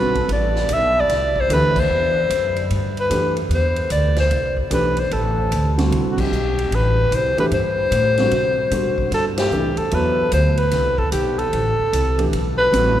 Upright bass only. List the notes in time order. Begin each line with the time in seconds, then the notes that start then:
Already playing: B1
0.28 A1
0.69 B1
1.09 C2
1.49 D2
1.90 E2
2.30 F#2
2.70 G2
3.10 F#2
3.49 E2
3.90 D2
4.30 C2
4.70 B1
5.11 A1
5.51 D2
5.91 C2
6.31 B1
6.71 A1
7.11 C2
7.37 muted upright bass stroke
7.51 G2
7.91 A2
8.31 C3
8.71 B2
9.11 G2
9.51 C2
9.78 muted upright bass stroke
9.92 E2
10.32 D2
10.73 C2
11.12 B1
11.53 A1
11.79 muted upright bass stroke
11.93 C2
12.33 B1
12.72 A1